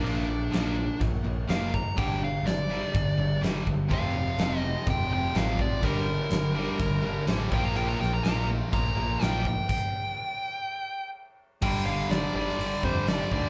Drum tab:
CC |x---x---x---x---|x---x---x---x---|x---x---x---x---|x---x---x---x---|
HH |----------------|----------------|----------------|----------------|
SD |----o-------o---|----o-------o---|----o-------o---|----o-------o---|
BD |--------o-----o-|o-------o-----o-|o-------o-----o-|o-------o-----o-|

CC |x---x---x---x---|x---------------|x---------------|
HH |----------------|----------------|----o---o---o---|
SD |--o-o-------o---|----------------|----o--o----o---|
BD |--------o-----o-|o---------------|o---------o---o-|